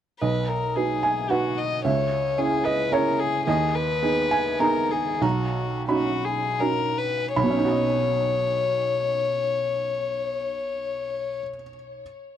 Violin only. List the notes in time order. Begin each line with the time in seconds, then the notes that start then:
0.20 B4
0.48 A#4
0.76 G#4
1.30 F#4
1.58 D#5
1.85 C#5
2.38 G#4
2.64 B4
2.92 A#4
3.19 G#4
3.47 G#4
3.75 B4
4.59 A#4
4.91 G#4
5.22 F#4
5.88 F#4
6.25 G#4
6.60 A#4
6.98 B4
7.36 C#5